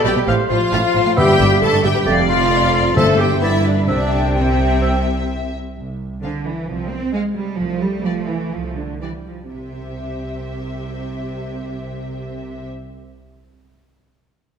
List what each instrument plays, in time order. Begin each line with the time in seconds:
Already playing: flute section D5
0.05 double bass section B1, cello section B2, french horn section G3, clarinet G4, viola section G4, violin section D5 G5
0.16 cello section B2, violin section B4
0.27 double bass section A1, cello section A2, bassoon C4, flute section C5, violin section F5, oboe F5
0.49 double bass section A1, cello section A2, french horn section F3, viola section F4, clarinet F4, violin section C5 F5
0.72 double bass section A1, cello section A2, flute section F5, violin section F5
0.95 double bass section A1, cello section A2, violin section C5
1.05 cello section A2, violin section F5
1.17 timpani G2, french horn section G3, bassoon B3, clarinet G4, viola section G4, flute section E5, oboe E5, violin section G5
1.28 cello section G2, violin section B4
1.40 double bass section G1, cello section G2, violin section E5
1.61 double bass section G1, cello section G2, french horn section A3, viola section A4, clarinet A4, violin section B4 A5
1.73 cello section G2, violin section E5
1.83 double bass section G1, cello section G2, french horn section G3, clarinet G4, viola section G4, violin section E5 G5
1.94 cello section G2, violin section B4
2.05 double bass section F1, cello section F2, bassoon A3, violin section D5, oboe D5, flute section F5
2.28 french horn section F3, viola section F4, clarinet F4, violin section F5
2.51 flute section D5
2.95 double bass section G1, cello section G2, timpani G2, french horn section A3, bassoon C4, viola section A4, clarinet A4, violin section C5 A5, flute section E5, oboe E5
3.19 french horn section G3, viola section G4, clarinet G4, violin section G5
3.41 double bass section G1, cello section G2, french horn section E3, bassoon B3, clarinet E4, viola section E4, violin section B4 E5, oboe D5
3.65 french horn section D3, viola section D4, clarinet D4, violin section D5
3.87 double bass section C2, cello section C3, french horn section D3, bassoon C4, viola section D4, clarinet D4, violin section D5 E5, oboe E5, flute section G5
4.35 french horn section C3, clarinet C4, viola section C4, violin section C5 E5
4.81 bassoon C4, oboe E5
5.76 double bass section C2
6.22 cello section D3, violin section G#4 C5 F5
6.45 cello section E3
6.68 double bass section C2, cello section F3, viola section C4
6.90 cello section C4
7.13 cello section G#3, viola section G#3, violin section G#4 C5 F5
7.35 cello section G3
7.59 double bass section C2, cello section F3, viola section A3
7.82 cello section G3
8.05 cello section F3, violin section G4 B4 D5
8.29 cello section E3
8.53 double bass section C2, cello section F3
8.77 cello section D3
9.01 cello section E3, viola section G3, violin section G4 B4 D5
9.27 cello section F3
9.51 double bass section C2, cello section C3, viola section G4, violin section C5 E5